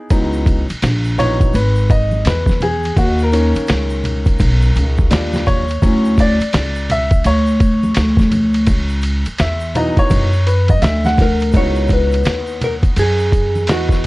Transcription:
Already playing: D#4 E4 G#4
0.10 C#2 E3 F#3 B3 D#4, kick, ride, shaker
0.33 shaker
0.46 kick, ride, shaker
0.69 muted upright bass stroke, ride, shaker
0.82 A#1, snare, hi-hat pedal, ride, shaker
1.05 shaker
1.18 E3 F#3 B3 D#4 C#5, ride, low conga, shaker
1.40 kick, ride, shaker
1.54 G#1 B4, ride, shaker
1.76 shaker
1.90 D#5, kick, ride, shaker
2.11 high conga, shaker
2.25 E2 B4, snare, hi-hat pedal, ride, shaker
2.46 kick, snare, high conga, shaker
2.61 G#4, ride, high conga, low conga, shaker
2.83 ride, shaker
2.97 D#2 F#4, kick, ride, shaker
3.19 A#4, shaker
3.32 D#3 A#3 C#4, ride, shaker
3.55 muted upright bass stroke, ride, shaker
3.67 C#2, snare, hi-hat pedal, ride, shaker
3.90 shaker
4.04 ride, low conga, shaker
4.25 kick, ride, shaker
4.39 B1, kick, ride, shaker
4.62 shaker
4.75 C#2, ride, shaker
4.98 kick, high conga, shaker
5.10 D#2 F3 G3 D4, snare, hi-hat pedal, ride, shaker
5.33 snare, high conga, shaker
5.47 C#5, kick, ride, high conga, low conga, shaker
5.68 ride, shaker
5.82 D2 E3 F#3 C#4, kick, ride, shaker
6.05 shaker
6.18 D5, kick, ride, shaker
6.40 muted upright bass stroke, ride, shaker
6.53 C#2, snare, hi-hat pedal, ride, shaker
6.75 shaker
6.90 E5, ride, low conga, shaker
7.11 kick, ride, shaker
7.24 D2 C#5, ride, shaker
7.47 shaker
7.60 kick, ride, shaker
7.83 high conga, shaker
7.95 D2, snare, hi-hat pedal, ride, shaker
8.17 kick, snare, high conga, shaker
8.31 ride, high conga, low conga, shaker
8.53 ride, shaker
8.66 C#2, kick, ride, shaker
8.89 shaker
9.02 ride, shaker
9.25 muted upright bass stroke, ride, shaker
9.38 E2 E5, snare, hi-hat pedal, ride, shaker
9.60 shaker
9.75 E3 F#3 B3 D#4 D#5, ride, low conga, shaker
9.97 C#5, muted upright bass stroke, kick, ride, shaker
10.10 F#2, kick, ride, low conga, shaker
10.33 shaker
10.47 B4, ride, shaker
10.68 D#5, kick, ride, high conga, shaker
10.82 D2 E5, snare, hi-hat pedal, ride, shaker
11.05 F#5, snare, high conga, shaker
11.18 kick, snare, ride, high conga, low conga, shaker
11.22 A#4
11.40 ride, shaker
11.52 C#2 B3 D#4 E4, kick, ride, shaker
11.56 F#4 C#5
11.75 shaker
11.88 kick, ride, shaker
11.93 B4
12.12 ride, shaker
12.24 snare, hi-hat pedal, ride, shaker
12.47 shaker
12.61 A#4, ride, low conga, shaker
12.83 kick, ride, shaker
12.96 F#2 G#4, ride, shaker
13.19 shaker
13.32 kick, ride, shaker
13.55 high conga, shaker
13.67 E2 B3 E4 F#4 D#5, snare, hi-hat pedal, ride, shaker
13.71 F#4
13.89 kick, snare, shaker

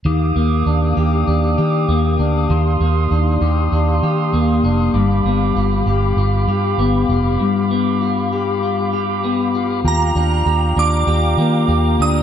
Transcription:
0.05 D#2 D#3 G4 F5 D6 D#6
0.36 D#2 A#3
0.66 D#2 D4
0.97 D#2 G4
1.27 D#2 D4
1.58 D#3 G4
1.88 D#2 A#3
2.19 D2 D4
2.49 D#2 D#3 C6
2.80 D#2 A#3
3.11 D#2 D4
3.41 D#2 G4
3.72 D#2 D4
4.03 D#3 G4
4.33 D#2 A#3
4.63 F1 D4
4.94 G1 G2 F5 B5 D6
5.25 G1 B3
5.56 G1 F4
5.86 G1 G4
6.17 G1 F4
6.47 G2 G4
6.78 G1 B3
7.09 F1 F4
7.40 G2
7.71 B3
8.02 F4
8.32 G4
8.63 F4
8.93 G4
9.24 B3
9.55 F4
9.84 D#2 F4 G4 F5 G5 A#5
10.15 D#2 D4
10.46 D#2 G4
10.76 D#2 D4 D6
11.07 D#2 G4
11.37 D#3 A#3
11.68 D#2 G4
11.99 D2 D4 D#6

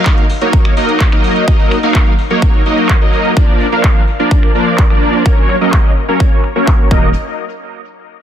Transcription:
Already playing: F#3 A#3 D#4 A#4 F5
0.06 kick, clap, closed hi-hat
0.18 closed hi-hat
0.30 open hi-hat
0.41 F#3 A#3 D#4 A#4 C#5, closed hi-hat
0.53 kick, closed hi-hat
0.65 finger snap, closed hi-hat
0.77 F#3 A#3 D#4 A#4 D#5, open hi-hat
0.89 closed hi-hat
1.00 kick, clap, closed hi-hat
1.12 F#3 A#3 D#4 A#4 D#5, finger snap, closed hi-hat
1.24 open hi-hat
1.36 closed hi-hat
1.48 F#3 D#4 D#5, kick, closed hi-hat
1.60 open hi-hat
1.71 finger snap, open hi-hat
1.83 F#3 A#3 D#4 A#4 F5, closed hi-hat
1.95 kick, clap
2.07 closed hi-hat
2.19 open hi-hat
2.30 F#3 A#3 D#4 A#4 C#5, closed hi-hat
2.42 kick
2.54 closed hi-hat
2.66 F#3 A#3 D#4 A#4 D#5, open hi-hat
2.78 closed hi-hat
2.89 kick, clap
3.01 F#3 A#3 D#4 A#4 D#5, closed hi-hat
3.13 open hi-hat
3.25 closed hi-hat
3.37 F3 A#3 D4 A#4, kick
3.60 open hi-hat
3.72 F3 A#3 D4 A#4 F5, closed hi-hat
3.84 kick, clap
3.96 closed hi-hat
4.08 open hi-hat
4.19 F3 A#3 D4 A#4 D5, closed hi-hat
4.31 kick
4.43 finger snap, closed hi-hat
4.55 F3 A#3 D4 A#4 D5, open hi-hat
4.67 closed hi-hat
4.78 kick, clap
4.90 F3 A#3 D4 A#4 D5, finger snap, closed hi-hat
5.02 open hi-hat
5.14 closed hi-hat
5.26 F#3 A#3 C#4 C#5, kick
5.38 open hi-hat
5.49 finger snap, open hi-hat
5.61 F#3 A#3 C#4 A#4 D#5, closed hi-hat
5.73 kick, clap
5.97 open hi-hat
6.08 F#3 A#3 C#4 A#4 C#5, closed hi-hat
6.20 kick
6.32 closed hi-hat
6.44 finger snap, open hi-hat
6.56 F#3 A#3 C#4 A#4 C#5, closed hi-hat
6.67 kick, clap
6.91 D#1 F#3 A#3 D#4 A#4 D#5, kick

